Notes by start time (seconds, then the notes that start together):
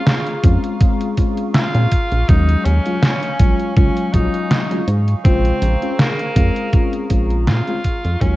Already playing: F4 G#4 F5 A#5 C#6
0.07 snare, closed hi-hat
0.26 closed hi-hat
0.43 F2 G#3 C4 C#4 F4, kick, closed hi-hat
0.64 closed hi-hat
0.80 G#3 C4 C#4 F4, kick, closed hi-hat
1.01 closed hi-hat
1.17 G#3 C4 C#4 F4, kick, closed hi-hat
1.37 closed hi-hat
1.54 F4, snare, closed hi-hat
1.74 A#2 G#3 C4 C#4 F4, closed hi-hat
1.91 kick, closed hi-hat
2.12 A#1, closed hi-hat
2.28 D#2 F#3 G#3 C#4 D#4 F4 G#5, kick, closed hi-hat
2.49 closed hi-hat
2.65 D#2 C#4, closed hi-hat
2.85 F#3 G#3 C#4 F4, closed hi-hat
3.03 snare, closed hi-hat
3.23 closed hi-hat
3.39 A#1 F#3 G#3 C#4 F4, kick, closed hi-hat
3.60 closed hi-hat
3.76 C#2 F#3 G#3 C#4 F4, kick, closed hi-hat
3.97 closed hi-hat
4.13 A#1 F#3 G#3 C#4 D#4 F4, kick, closed hi-hat
4.34 closed hi-hat
4.51 snare, closed hi-hat
4.70 F#3 G#3 C#4 F4, closed hi-hat
4.88 G#2, closed hi-hat
5.08 closed hi-hat
5.25 A#1 C#3 G#3 C4 F4 G#4 A#5, kick, closed hi-hat
5.45 closed hi-hat
5.62 A#1, closed hi-hat
5.81 G#3 C4 C#4 F4, closed hi-hat
5.99 A#3, snare, closed hi-hat
6.19 closed hi-hat
6.35 F2 G#3 C4 C#4 F4, kick, closed hi-hat
6.56 closed hi-hat
6.72 G#3 C4 C#4 F4, kick, closed hi-hat
6.93 closed hi-hat
7.09 A#1 G#3 C4 C#4 F4, kick, closed hi-hat
7.30 closed hi-hat
7.47 A#2 F4, snare, closed hi-hat
7.67 G#3 C4 C#4 F4, closed hi-hat
7.84 kick, closed hi-hat
8.04 F2, closed hi-hat
8.20 D#2 F#3 G#3 C#4 F4 F5 G#5 C#6, kick, closed hi-hat